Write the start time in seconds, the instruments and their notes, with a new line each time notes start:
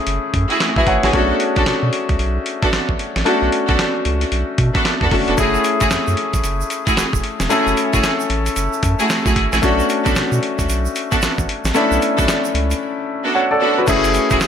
Already playing: grand piano A3 C#4 E4 G#4
0.07 analog synth bass F#1, closed hi-hat
0.34 analog synth bass F#2, kick, closed hi-hat
0.50 string section A3 E4 F#4 G#4, closed hi-hat
0.60 snare, clap, closed hi-hat
0.76 analog synth bass B1, string section A3 E4 F#4 G#4, grand piano B4 E5, kick
0.87 analog synth bass G#1, grand piano C#5 F#5, kick, closed hi-hat
1.03 analog synth bass A1, string section A3 E4 F#4 G#4, grand piano G#4 C#5, snare, closed hi-hat
1.13 analog synth bass B1, grand piano A3 C#4 D4 F#4, string section B3 D4 F#4 A4, kick, closed hi-hat
1.40 closed hi-hat
1.56 analog synth bass B1, string section B3 D4 F#4 A4, kick, closed hi-hat
1.66 analog synth bass B2, snare, clap, closed hi-hat
1.83 analog synth bass B2
1.93 closed hi-hat
2.09 analog synth bass C#2, kick, closed hi-hat
2.19 analog synth bass B1, closed hi-hat
2.46 closed hi-hat
2.63 string section B3 D4 F#4 A4, kick, closed hi-hat
2.73 analog synth bass A1, snare, clap, closed hi-hat
2.89 analog synth bass A1, kick
2.99 closed hi-hat
3.16 analog synth bass A1, snare, closed hi-hat
3.25 grand piano A3 C#4 D4 F#4, string section B3 D4 F#4 A4, closed hi-hat
3.42 analog synth bass B1
3.52 closed hi-hat
3.69 analog synth bass B1, string section B3 D4 F#4 A4, kick, closed hi-hat
3.79 snare, clap, closed hi-hat
4.05 analog synth bass C#2, closed hi-hat
4.21 closed hi-hat
4.32 analog synth bass B1, closed hi-hat
4.58 analog synth bass B2, kick, closed hi-hat
4.75 string section B3 D4 F#4 A4, kick, closed hi-hat
4.85 snare, clap, closed hi-hat
5.01 analog synth bass E2, string section B3 D4 F#4 A4, kick
5.11 analog synth bass F#1, grand piano A3 C#4 D4 F#4, kick, open hi-hat
5.28 analog synth bass E1, string section B3 D4 F#4 A4, closed hi-hat
5.37 analog synth bass F#1, grand piano A3 C#4 E4 G#4, string section A3 E4 F#4 G#4, kick, closed hi-hat, shaker
5.54 shaker
5.64 closed hi-hat, shaker
5.80 analog synth bass F#1, string section A3 E4 F#4 G#4, kick, closed hi-hat, shaker
5.91 analog synth bass F#2, snare, clap, closed hi-hat, shaker
6.07 analog synth bass F#2, shaker
6.17 closed hi-hat
6.33 analog synth bass A1, kick, closed hi-hat, shaker
6.44 analog synth bass F#1, closed hi-hat, shaker
6.61 shaker
6.70 closed hi-hat, shaker
6.87 string section A3 E4 F#4 G#4, kick, closed hi-hat, shaker
6.97 analog synth bass E1, snare, clap, closed hi-hat, shaker
7.13 analog synth bass E1, kick, shaker
7.24 closed hi-hat
7.40 analog synth bass E1, snare, closed hi-hat, shaker
7.49 grand piano A3 C#4 E4 A4, string section A3 E4 F#4 G#4, closed hi-hat, shaker
7.67 analog synth bass F#1, shaker
7.77 closed hi-hat, shaker
7.93 analog synth bass F#1, string section A3 E4 F#4 G#4, kick, closed hi-hat, shaker
8.03 snare, clap, closed hi-hat, shaker
8.20 shaker
8.30 analog synth bass A1, closed hi-hat
8.46 closed hi-hat, shaker
8.56 analog synth bass F#1, closed hi-hat, shaker
8.73 shaker
8.83 analog synth bass F#2, kick, closed hi-hat, shaker
8.99 string section A3 E4 F#4 G#4, closed hi-hat, shaker
9.10 snare, clap, closed hi-hat, shaker
9.26 analog synth bass B1, string section A3 E4 F#4 G#4, kick, shaker
9.36 analog synth bass G#1, kick, closed hi-hat
9.52 analog synth bass A1, string section A3 E4 F#4 G#4, snare, closed hi-hat, shaker
9.62 analog synth bass B1, grand piano A3 C#4 D4 F#4, string section B3 D4 F#4 A4, kick, closed hi-hat, shaker
9.79 shaker
9.89 closed hi-hat, shaker
10.05 analog synth bass B1, string section B3 D4 F#4 A4, kick, closed hi-hat, shaker
10.16 analog synth bass B2, snare, clap, closed hi-hat, shaker
10.32 analog synth bass B2, shaker
10.43 closed hi-hat
10.59 analog synth bass C#2, kick, closed hi-hat, shaker
10.68 analog synth bass B1, closed hi-hat, shaker
10.85 shaker
10.96 closed hi-hat, shaker
11.11 string section B3 D4 F#4 A4, kick, closed hi-hat, shaker
11.22 analog synth bass A1, snare, clap, closed hi-hat, shaker
11.38 analog synth bass A1, kick, shaker
11.49 closed hi-hat
11.65 analog synth bass A1, snare, closed hi-hat, shaker
11.74 grand piano A3 C#4 D4 E4, string section B3 D4 F#4 A4, closed hi-hat, shaker
11.91 analog synth bass B1, shaker
12.02 closed hi-hat, shaker
12.18 analog synth bass B1, string section B3 D4 F#4 A4, kick, closed hi-hat, shaker
12.28 snare, clap, closed hi-hat, shaker
12.45 shaker
12.55 analog synth bass C#2, closed hi-hat
12.71 closed hi-hat, shaker
13.24 string section B3 D4 F#4 A4
13.35 grand piano C#5 F#5
13.51 grand piano A4 D5
13.61 string section B3 D4 F#4 A4
13.78 grand piano F#4 B4
13.87 analog synth bass F#1, grand piano A3 C#4 E4 G#4, string section A3 E4 F#4 G#4, kick, closed hi-hat, crash, shaker
14.04 closed hi-hat, shaker
14.14 closed hi-hat, shaker
14.30 analog synth bass E1, string section A3 E4 F#4 G#4, kick, closed hi-hat, shaker
14.40 analog synth bass F#1, snare, clap, closed hi-hat, shaker